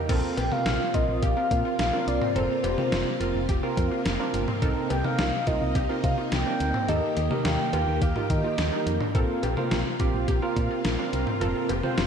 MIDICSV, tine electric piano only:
0, 0, Header, 1, 2, 480
1, 0, Start_track
1, 0, Tempo, 566038
1, 79, Time_signature, 4, 2, 24, 8
1, 10234, End_track
2, 0, Start_track
2, 0, Title_t, "Tine electric piano"
2, 0, Program_c, 0, 4
2, 78, Note_on_c, 0, 60, 90
2, 78, Note_on_c, 0, 65, 82
2, 78, Note_on_c, 0, 70, 101
2, 313, Note_off_c, 0, 60, 0
2, 313, Note_off_c, 0, 65, 0
2, 313, Note_off_c, 0, 70, 0
2, 438, Note_on_c, 0, 65, 70
2, 438, Note_on_c, 0, 70, 84
2, 439, Note_on_c, 0, 60, 74
2, 672, Note_off_c, 0, 70, 0
2, 673, Note_off_c, 0, 60, 0
2, 673, Note_off_c, 0, 65, 0
2, 799, Note_on_c, 0, 60, 73
2, 799, Note_on_c, 0, 65, 69
2, 799, Note_on_c, 0, 70, 82
2, 1033, Note_off_c, 0, 60, 0
2, 1033, Note_off_c, 0, 65, 0
2, 1033, Note_off_c, 0, 70, 0
2, 1159, Note_on_c, 0, 65, 72
2, 1159, Note_on_c, 0, 70, 87
2, 1160, Note_on_c, 0, 60, 77
2, 1471, Note_off_c, 0, 60, 0
2, 1471, Note_off_c, 0, 65, 0
2, 1471, Note_off_c, 0, 70, 0
2, 1639, Note_on_c, 0, 60, 72
2, 1639, Note_on_c, 0, 65, 69
2, 1639, Note_on_c, 0, 70, 84
2, 1873, Note_off_c, 0, 60, 0
2, 1873, Note_off_c, 0, 65, 0
2, 1873, Note_off_c, 0, 70, 0
2, 1999, Note_on_c, 0, 60, 77
2, 1999, Note_on_c, 0, 65, 73
2, 1999, Note_on_c, 0, 70, 82
2, 2233, Note_off_c, 0, 60, 0
2, 2233, Note_off_c, 0, 65, 0
2, 2233, Note_off_c, 0, 70, 0
2, 2359, Note_on_c, 0, 60, 79
2, 2359, Note_on_c, 0, 65, 71
2, 2360, Note_on_c, 0, 70, 85
2, 2593, Note_off_c, 0, 60, 0
2, 2593, Note_off_c, 0, 65, 0
2, 2593, Note_off_c, 0, 70, 0
2, 2719, Note_on_c, 0, 60, 73
2, 2719, Note_on_c, 0, 65, 68
2, 2720, Note_on_c, 0, 70, 82
2, 2953, Note_off_c, 0, 60, 0
2, 2953, Note_off_c, 0, 65, 0
2, 2953, Note_off_c, 0, 70, 0
2, 3079, Note_on_c, 0, 60, 89
2, 3079, Note_on_c, 0, 65, 83
2, 3079, Note_on_c, 0, 70, 102
2, 3391, Note_off_c, 0, 60, 0
2, 3391, Note_off_c, 0, 65, 0
2, 3391, Note_off_c, 0, 70, 0
2, 3557, Note_on_c, 0, 65, 79
2, 3557, Note_on_c, 0, 70, 99
2, 3558, Note_on_c, 0, 60, 90
2, 3792, Note_off_c, 0, 60, 0
2, 3792, Note_off_c, 0, 65, 0
2, 3792, Note_off_c, 0, 70, 0
2, 3917, Note_on_c, 0, 60, 92
2, 3917, Note_on_c, 0, 70, 100
2, 3918, Note_on_c, 0, 63, 85
2, 4152, Note_off_c, 0, 60, 0
2, 4152, Note_off_c, 0, 63, 0
2, 4152, Note_off_c, 0, 70, 0
2, 4279, Note_on_c, 0, 60, 78
2, 4279, Note_on_c, 0, 63, 72
2, 4279, Note_on_c, 0, 70, 83
2, 4513, Note_off_c, 0, 60, 0
2, 4513, Note_off_c, 0, 63, 0
2, 4513, Note_off_c, 0, 70, 0
2, 4640, Note_on_c, 0, 60, 77
2, 4640, Note_on_c, 0, 63, 68
2, 4640, Note_on_c, 0, 70, 83
2, 4873, Note_off_c, 0, 60, 0
2, 4873, Note_off_c, 0, 63, 0
2, 4873, Note_off_c, 0, 70, 0
2, 4998, Note_on_c, 0, 60, 79
2, 4998, Note_on_c, 0, 70, 86
2, 4999, Note_on_c, 0, 63, 71
2, 5310, Note_off_c, 0, 70, 0
2, 5311, Note_off_c, 0, 60, 0
2, 5311, Note_off_c, 0, 63, 0
2, 5479, Note_on_c, 0, 60, 73
2, 5479, Note_on_c, 0, 63, 68
2, 5479, Note_on_c, 0, 70, 85
2, 5713, Note_off_c, 0, 60, 0
2, 5713, Note_off_c, 0, 63, 0
2, 5713, Note_off_c, 0, 70, 0
2, 5839, Note_on_c, 0, 70, 82
2, 5840, Note_on_c, 0, 63, 77
2, 5840, Note_on_c, 0, 67, 71
2, 6073, Note_off_c, 0, 63, 0
2, 6073, Note_off_c, 0, 67, 0
2, 6073, Note_off_c, 0, 70, 0
2, 6199, Note_on_c, 0, 63, 80
2, 6200, Note_on_c, 0, 67, 72
2, 6200, Note_on_c, 0, 70, 86
2, 6433, Note_off_c, 0, 63, 0
2, 6433, Note_off_c, 0, 67, 0
2, 6433, Note_off_c, 0, 70, 0
2, 6560, Note_on_c, 0, 63, 76
2, 6560, Note_on_c, 0, 67, 69
2, 6560, Note_on_c, 0, 70, 84
2, 6793, Note_off_c, 0, 63, 0
2, 6793, Note_off_c, 0, 70, 0
2, 6794, Note_off_c, 0, 67, 0
2, 6918, Note_on_c, 0, 67, 69
2, 6919, Note_on_c, 0, 63, 79
2, 6919, Note_on_c, 0, 70, 84
2, 7231, Note_off_c, 0, 63, 0
2, 7231, Note_off_c, 0, 67, 0
2, 7231, Note_off_c, 0, 70, 0
2, 7399, Note_on_c, 0, 63, 73
2, 7399, Note_on_c, 0, 70, 81
2, 7400, Note_on_c, 0, 67, 67
2, 7633, Note_off_c, 0, 63, 0
2, 7633, Note_off_c, 0, 67, 0
2, 7633, Note_off_c, 0, 70, 0
2, 7759, Note_on_c, 0, 60, 91
2, 7759, Note_on_c, 0, 65, 82
2, 7759, Note_on_c, 0, 70, 100
2, 7993, Note_off_c, 0, 60, 0
2, 7993, Note_off_c, 0, 65, 0
2, 7993, Note_off_c, 0, 70, 0
2, 8118, Note_on_c, 0, 65, 82
2, 8118, Note_on_c, 0, 70, 103
2, 8119, Note_on_c, 0, 60, 92
2, 8353, Note_off_c, 0, 60, 0
2, 8353, Note_off_c, 0, 65, 0
2, 8353, Note_off_c, 0, 70, 0
2, 8478, Note_on_c, 0, 65, 81
2, 8478, Note_on_c, 0, 67, 99
2, 8479, Note_on_c, 0, 60, 88
2, 8713, Note_off_c, 0, 60, 0
2, 8713, Note_off_c, 0, 65, 0
2, 8713, Note_off_c, 0, 67, 0
2, 8838, Note_on_c, 0, 65, 85
2, 8839, Note_on_c, 0, 60, 94
2, 8839, Note_on_c, 0, 70, 101
2, 9151, Note_off_c, 0, 60, 0
2, 9151, Note_off_c, 0, 65, 0
2, 9151, Note_off_c, 0, 70, 0
2, 9318, Note_on_c, 0, 65, 81
2, 9318, Note_on_c, 0, 70, 98
2, 9319, Note_on_c, 0, 60, 89
2, 9552, Note_off_c, 0, 65, 0
2, 9552, Note_off_c, 0, 70, 0
2, 9553, Note_off_c, 0, 60, 0
2, 9677, Note_on_c, 0, 60, 89
2, 9677, Note_on_c, 0, 65, 83
2, 9677, Note_on_c, 0, 70, 101
2, 9912, Note_off_c, 0, 60, 0
2, 9912, Note_off_c, 0, 65, 0
2, 9912, Note_off_c, 0, 70, 0
2, 10037, Note_on_c, 0, 72, 103
2, 10038, Note_on_c, 0, 60, 90
2, 10038, Note_on_c, 0, 65, 86
2, 10234, Note_off_c, 0, 60, 0
2, 10234, Note_off_c, 0, 65, 0
2, 10234, Note_off_c, 0, 72, 0
2, 10234, End_track
0, 0, End_of_file